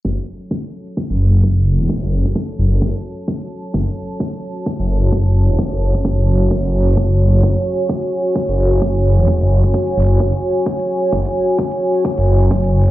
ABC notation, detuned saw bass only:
X:1
M:4/4
L:1/16
Q:"Swing 16ths" 1/4=130
K:F#m
V:1 name="Detuned saw bass" clef=bass
F,,, z8 F,,,3 z3 E,,,- | E,,, F,,,3 z2 F,,,3 z6 z | F,,, z8 F,,,3 F,,,3 E,,,- | E,,, F,,,3 F,,,2 F,,,4 F,,,2 F,,,3 F,,, |
F,,, z8 F,,,3 F,,,3 E,,,- | E,,, F,,,3 z2 F,,,3 z6 z | F,,, z8 F,,,3 F,,,3 E,,, |]